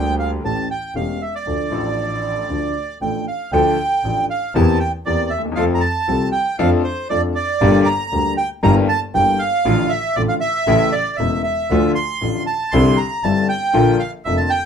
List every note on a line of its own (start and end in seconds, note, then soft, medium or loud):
0.00 0.40 D2 loud
0.00 0.40 D2 medium
0.00 0.40 D3 medium
0.00 0.40 G3 medium
0.00 0.41 A#3 medium
0.00 0.41 G4 medium
0.00 0.14 G5 loud
0.20 0.31 F5 medium
0.44 0.66 A1 medium
0.44 0.66 A2 medium
0.44 0.65 E3 soft
0.44 0.65 A3 soft
0.44 0.66 C#4 soft
0.44 0.66 G4 medium
0.44 0.68 A5 medium
0.71 0.94 G5 medium
0.95 1.17 E1 medium
0.95 1.17 E2 medium
0.95 1.17 E3 soft
0.95 1.17 A3 soft
0.95 1.17 C#4 soft
0.95 1.17 G4 soft
0.95 1.22 F5 medium
1.22 1.35 E5 medium
1.35 2.98 D5 medium
1.46 1.68 D2 medium
1.46 1.68 D3 soft
1.46 1.68 F3 soft
1.46 1.68 A3 soft
1.46 1.68 D4 soft
1.46 1.69 A4 soft
1.70 2.45 A1 medium
1.70 2.45 A2 medium
1.70 2.44 F3 medium
1.70 2.45 A3 medium
1.70 2.46 D4 medium
1.70 2.46 A4 medium
2.49 2.71 D2 medium
2.49 2.71 D3 medium
2.49 2.71 F3 soft
2.49 2.71 A3 soft
2.49 2.71 D4 soft
2.49 2.71 A4 soft
3.01 3.23 A1 medium
3.01 3.23 A2 medium
3.01 3.23 F3 soft
3.01 3.23 A3 soft
3.01 3.23 D4 soft
3.01 3.23 A4 soft
3.01 3.25 G5 medium
3.28 3.51 F5 medium
3.52 3.74 D2 medium
3.52 3.74 D3 medium
3.52 3.75 F3 medium
3.52 3.74 A3 medium
3.52 3.75 D4 medium
3.52 3.75 A4 medium
3.52 4.25 G5 medium
4.04 4.25 A1 medium
4.04 4.26 A1 medium
4.04 4.26 A2 medium
4.04 4.26 F3 medium
4.04 4.26 A3 soft
4.04 4.26 D4 soft
4.04 4.26 A4 medium
4.30 4.54 F5 medium
4.54 4.76 E2 loud
4.54 4.77 E2 loud
4.54 4.77 E3 medium
4.54 4.77 A#3 medium
4.54 4.77 C4 medium
4.54 4.77 G4 medium
4.54 4.79 A5 loud
4.80 4.92 G5 medium
5.06 5.27 E2 medium
5.06 5.28 E2 medium
5.06 5.28 E3 medium
5.06 5.28 A#3 medium
5.06 5.28 C4 soft
5.06 5.28 G4 medium
5.06 5.32 D5 loud
5.30 5.57 D#2 medium
5.30 5.42 E5 medium
5.38 5.44 D2 medium
5.45 5.51 D#2 medium
5.52 5.58 E2 medium
5.52 5.64 F5 loud
5.57 5.79 F2 medium
5.57 5.79 F3 loud
5.57 5.79 A3 medium
5.57 5.79 C4 medium
5.57 5.79 A4 medium
5.75 5.82 A#5 medium
5.81 6.29 A5 loud
6.08 6.30 C2 medium
6.08 6.30 C3 medium
6.08 6.29 F3 medium
6.08 6.29 A3 soft
6.08 6.30 C4 soft
6.08 6.30 A4 medium
6.32 6.56 G5 medium
6.59 6.80 F2 loud
6.59 6.81 F2 loud
6.59 6.81 F3 loud
6.59 6.81 A3 medium
6.59 6.81 D4 medium
6.59 6.81 A4 loud
6.59 6.70 F5 loud
6.84 7.08 C5 medium
7.10 7.32 F2 medium
7.10 7.32 F3 medium
7.10 7.32 A3 soft
7.10 7.32 D4 medium
7.10 7.32 A4 medium
7.10 7.21 D5 loud
7.35 7.88 D5 loud
7.61 7.83 G1 loud
7.61 7.83 G2 loud
7.61 7.83 D3 medium
7.61 7.83 G3 medium
7.61 7.83 A#3 medium
7.61 7.83 G4 medium
7.86 8.34 A#5 loud
8.12 8.34 D2 medium
8.12 8.34 D3 medium
8.12 8.34 G3 soft
8.12 8.34 A#3 soft
8.12 8.34 G4 medium
8.37 8.49 G5 loud
8.63 8.84 G1 loud
8.63 8.85 G1 loud
8.63 8.85 G2 loud
8.63 8.85 E3 medium
8.63 8.84 G3 medium
8.63 8.85 A#3 medium
8.63 8.85 G4 loud
8.63 8.75 A#5 loud
8.89 9.00 A5 loud
9.14 9.36 G1 medium
9.14 9.36 G2 medium
9.14 9.35 E3 medium
9.14 9.36 G3 soft
9.14 9.36 A#3 medium
9.14 9.36 G4 medium
9.14 9.41 G5 loud
9.39 9.92 F5 loud
9.65 9.87 A1 medium
9.65 9.87 A1 loud
9.65 9.87 A2 loud
9.65 9.87 D3 medium
9.65 9.87 F3 medium
9.65 9.87 A3 medium
9.65 9.87 F4 medium
9.89 10.16 E5 loud
10.16 10.38 A1 medium
10.16 10.38 A2 medium
10.16 10.38 D3 medium
10.16 10.38 F3 soft
10.16 10.38 A3 soft
10.16 10.38 F4 medium
10.16 10.22 D5 loud
10.29 10.34 F5 medium
10.41 10.94 E5 loud
10.67 10.89 A1 loud
10.67 10.89 A2 loud
10.67 10.89 C#3 medium
10.67 10.89 E3 medium
10.67 10.89 A3 medium
10.67 10.89 E4 loud
10.92 11.17 D5 loud
11.17 11.41 E1 medium
11.17 11.41 E2 medium
11.17 11.41 C#3 medium
11.17 11.41 E3 soft
11.17 11.41 A3 soft
11.17 11.41 E4 medium
11.17 11.42 E5 loud
11.44 11.92 E5 loud
11.70 11.92 D2 loud
11.70 11.93 D2 medium
11.70 11.92 D3 loud
11.70 11.93 F3 medium
11.70 11.92 A3 medium
11.70 11.93 F4 medium
11.95 12.43 C6 loud
12.21 12.43 A1 medium
12.21 12.43 A2 medium
12.21 12.43 D3 soft
12.21 12.43 F3 soft
12.21 12.43 A3 soft
12.21 12.43 F4 medium
12.47 12.73 A5 loud
12.72 12.94 C2 loud
12.72 12.95 C2 loud
12.72 12.95 C3 loud
12.72 12.94 D3 medium
12.72 12.94 G3 medium
12.72 12.95 C4 medium
12.72 12.95 E4 medium
12.72 12.99 C6 loud
12.97 13.24 A#5 loud
13.23 13.45 G1 medium
13.23 13.46 G1 medium
13.23 13.46 G2 medium
13.23 13.46 D3 medium
13.23 13.46 G3 medium
13.23 13.46 C4 soft
13.23 13.46 E4 medium
13.23 13.47 A5 loud
13.49 14.02 G5 loud
13.73 13.96 A#1 medium
13.73 13.96 A#1 loud
13.73 13.96 A#2 medium
13.73 13.95 D3 medium
13.73 13.96 F3 medium
13.73 13.96 A#3 medium
13.73 13.96 F4 medium
14.00 14.11 F5 loud
14.25 14.47 F1 medium
14.25 14.47 F2 medium
14.25 14.47 D3 medium
14.25 14.47 F3 soft
14.25 14.47 A#3 soft
14.25 14.47 F4 medium
14.25 14.38 E5 loud
14.37 14.51 A5 medium
14.50 14.65 G5 loud